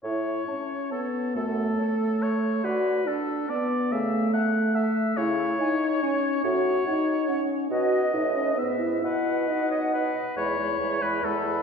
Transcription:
<<
  \new Staff \with { instrumentName = "Flute" } { \time 3/4 \key a \major \tempo 4 = 140 r4 a''4 a''4 | r4 a''4 a''4 | r4 a''4 a''4 | r4 a''4 a''4 |
\key e \major r4 gis''4 gis''4 | r4 fis''4 fis''4 | dis''4 dis''4 e''4 | fis''4 fis''4. r8 |
b''8 b''8 b''8 b''8 b''8 b''8 | }
  \new Staff \with { instrumentName = "Clarinet" } { \time 3/4 \key a \major r4 cis''4 cis''4 | r4 cis''4 cis''4 | r4 d''4 d''4 | r4 e''4 e''4 |
\key e \major r4 cis''4 cis''4 | r4 cis''4 cis''4 | b'4 b'4 b'4 | b'4 dis''8 cis''8 b'8 dis''8 |
e'8 e'8 e'8 e'8 e'8 e'8 | }
  \new Staff \with { instrumentName = "Oboe" } { \time 3/4 \key a \major cis''2 a'4 | a'2 cis''4 | b'4 a'4 d''4 | e''4 fis''4 e''4 |
\key e \major cis''2. | cis''2~ cis''8 r8 | dis''2 e''4 | b'4. dis''8 b'4 |
cis''4. b'8 a'4 | }
  \new Staff \with { instrumentName = "French horn" } { \time 3/4 \key a \major e'4 cis'4 b4 | a2. | fis'4 d'4 b4 | a2. |
\key e \major e'4 dis'4 cis'4 | fis'4 dis'4 cis'4 | fis'4 dis'8 cis'8 b8 e'8 | e'4 dis'4. r8 |
gis8 gis8 gis8 gis8 gis8 gis8 | }
  \new Staff \with { instrumentName = "Bassoon" } { \clef bass \time 3/4 \key a \major a,4 r2 | fis,4 r2 | d4 r2 | cis4 r2 |
\key e \major cis4 r2 | a,4 r2 | b,4 a,4 gis,4 | b,2~ b,8 r8 |
e,4 e,4 e,4 | }
>>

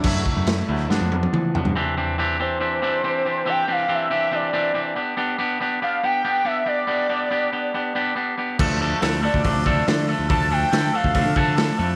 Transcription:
<<
  \new Staff \with { instrumentName = "Analog synth lead" } { \time 4/4 \key g \major \tempo 4 = 140 r1 | \key c \major r4. c''2~ c''8 | g''8 f''8 e''8 e''8 d''4. r8 | r4. f''8 g''4 e''8 d''8~ |
d''2.~ d''8 r8 | r4. d''2 r8 | a''8 g''4 f''4 a''4 r8 | }
  \new Staff \with { instrumentName = "Clean electric guitar" } { \time 4/4 \key g \major <fis a e'>4. <fis a e'>8 <f b d'>4. <f b d'>8 | \key c \major <e c' d' g'>8 <e c' d' g'>8 <e c' d' g'>8 <e c' d' g'>8 <e c' d' g'>8 <e c' d' g'>8 <e c' d' g'>8 <e c' d' g'>8 | <e c' d' g'>8 <e c' d' g'>8 <e c' d' g'>8 <e c' d' g'>8 <e c' d' g'>8 <e c' d' g'>8 <e c' d' g'>8 <b d' g'>8 | <b d' g'>8 <b d' g'>8 <b d' g'>8 <b d' g'>8 <b d' g'>8 <b d' g'>8 <b d' g'>8 <b d' g'>8 |
<b d' g'>8 <b d' g'>8 <b d' g'>8 <b d' g'>8 <b d' g'>8 <b d' g'>8 <b d' g'>8 <b d' g'>8 | <f a d' a'>8 <f a d' a'>8 <f a d' a'>8 <f a d' a'>8 <f a d' a'>8 <f a d' a'>8 <f a d' a'>8 <f a d' a'>8 | <f a d' a'>8 <f a d' a'>8 <f a d' a'>8 <f a d' a'>8 <f a d' a'>8 <f a d' a'>8 <f a d' a'>8 <f a d' a'>8 | }
  \new Staff \with { instrumentName = "Picked electric bass" } { \clef bass \time 4/4 \key g \major fis,8 r16 fis,8. d,8 g,16 f,8. e8. g,16 | \key c \major r1 | r1 | r1 |
r1 | d,4 d,8. d,16 a,,16 d,8. d8. d,16 | d,4 d8 r16 d,16 d,16 d16 d4 f,8 | }
  \new DrumStaff \with { instrumentName = "Drums" } \drummode { \time 4/4 <cymc bd>8 bd8 <cymc sn>4 sn8 tommh16 tommh16 toml8 tomfh16 tomfh16 | r4 r4 r4 r4 | r4 r4 r4 r4 | r4 r4 r4 r4 |
r4 r4 r4 r4 | <cymc bd>4 <hho sn>8. bd16 <hho bd>8 bd8 <hho sn>4 | <hho bd>4 <hho sn>8. bd16 <hho bd>8 bd8 <hho sn>4 | }
>>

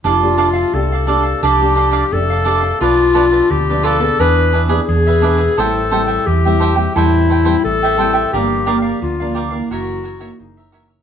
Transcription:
<<
  \new Staff \with { instrumentName = "Cavaquinho" } { \time 4/4 \key f \major \tempo 4 = 87 <d' a' d'' f''>8 <d' a' d'' f''>16 <a' d'' f''>8 <a' d'' f''>16 <d' a' d'' f''>16 <a' d'' f''>16 <d' a' d'' f''>8 <d' a' d'' f''>16 <d' a' d'' f''>16 r16 <a' d'' f''>16 <d' a' d'' f''>16 <a' d'' f''>16 | <f' a' b' d''>8 <f' a' b' d''>16 <a' b' d''>8 <a' b' d''>16 <f' a' b' d''>16 <a' b' d''>16 <d' gis' b' e''>8 <d' gis' b' e''>16 <d' gis' b' e''>16 r16 <gis' b' e''>16 <d' gis' b' e''>16 <gis' b' e''>16 | <a' c'' e'' g''>8 <a' c'' e'' g''>16 <c'' e'' g''>8 <c'' e'' g''>16 <a' c'' e'' g''>16 <c'' e'' g''>16 <a' c'' e'' g''>8 <a' c'' e'' g''>16 <a' c'' e'' g''>16 r16 <c'' e'' g''>16 <a' c'' e'' g''>16 <c'' e'' g''>16 | <g' bes' d'' f''>8 <g' bes' d'' f''>16 <bes' d'' f''>8 <bes' d'' f''>16 <g' bes' d'' f''>16 <bes' d'' f''>16 <ges' bes' des'' e''>8 <ges' bes' des'' e''>16 <ges' bes' des'' e''>16 r16 <bes' des'' e''>16 <ges' bes' des'' e''>16 <bes' des'' e''>16 | }
  \new Staff \with { instrumentName = "Clarinet" } { \time 4/4 \key f \major f'4 a'4 g'4 a'4 | f'4 g'8 a'8 b'8 r8 gis'4 | a'4 g'4 e'4 a'4 | g'4 f'8 r8 ges'4 ees'4 | }
  \new Staff \with { instrumentName = "Nylon-string guitar" } { \time 4/4 \key f \major << { <a d' g'>16 <a d' g'>8. <a d' g'>8 <a d' g'>8. <a d' g'>8. <a d' g'>16 r16 <a d' g'>16 r16 | <f a d'>16 r16 <f a d'>8. <f a d'>8 <b d' aes'>4 <b d' gis'>8. <b d' gis'>16 r16 | <g c' e'>16 r16 <g c' e'>8 r16 <g c' e'>8 <g c' e'>16 <g c' e'>8. <g c' e'>8. <g c' e'>16 r16 | <f bes d'>8 <f bes d'>8. <f bes d'>8 <e bes>4 <e bes ees'>8. <e bes ees'>8 | } \\ { f4 c4 f4 c4 | b,4 b,4 e4 b,4 | a,4 e4 a,4 e4 | g,4 d4 ges,4 des4 | } >> }
  \new Staff \with { instrumentName = "Fingered electric bass" } { \clef bass \time 4/4 \key f \major f,,4 c,4 c,4 f,,4 | b,,4 d,4 e,4 e,4 | a,,4 e,4 e,4 a,,4 | g,,4 d,4 ges,,4 ges,,4 | }
>>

